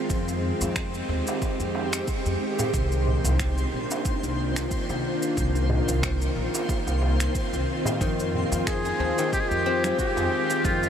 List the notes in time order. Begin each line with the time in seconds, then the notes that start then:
Already playing: D#3 G#3 A#3 C4 C5
0.10 F2 G4, kick, shaker
0.28 darbuka tek, shaker
0.61 F2, darbuka ka, shaker
0.76 finger snap, kick, shaker
0.94 shaker
1.09 D#2
1.27 darbuka tek, shaker
1.42 kick, darbuka ka, shaker
1.60 F2, shaker
1.75 darbuka tek
1.93 finger snap, shaker
2.08 kick, shaker
2.26 F2, darbuka ka, shaker
2.59 darbuka ka, darbuka tek, darbuka dum, shaker
2.74 C2 A#3 D4 F4, kick, shaker
2.92 shaker
3.07 darbuka dum
3.24 C2, darbuka ka, shaker
3.39 finger snap, kick, shaker
3.58 shaker
3.72 A#1
3.91 darbuka tek, shaker
4.05 kick, shaker
4.23 C2, shaker
4.56 finger snap, darbuka tek, shaker
4.71 kick, shaker
4.89 C2, darbuka tek, shaker
5.22 shaker
5.37 C2 C4, kick, shaker
5.55 darbuka tek, shaker
5.70 darbuka dum
5.88 C2, darbuka ka, shaker
6.03 finger snap, kick, shaker
6.22 shaker
6.36 A#1
6.55 darbuka tek, shaker
6.69 kick, darbuka ka, shaker
6.87 C2, darbuka tek, shaker
7.02 darbuka tek
7.20 finger snap, shaker
7.35 kick, shaker
7.53 C2, darbuka ka, shaker
7.85 darbuka ka, darbuka tek, darbuka dum, shaker
8.01 F2 D#3 G#3, kick, shaker
8.20 shaker
8.34 darbuka dum
8.52 F2, darbuka ka, shaker
8.67 G#4, finger snap, kick, shaker
8.85 G#4, shaker
8.99 D#2 F3
9.18 D#3, darbuka tek, shaker
9.33 G4, kick, shaker
9.40 G#4
9.48 F2 G4, shaker
9.66 C4
9.83 finger snap, darbuka tek, low conga, shaker
9.99 F4 G4, kick, shaker
10.16 F2 G#4, darbuka tek, shaker
10.50 F4, shaker
10.65 F2 D#3 F4, kick, shaker
10.83 darbuka tek, shaker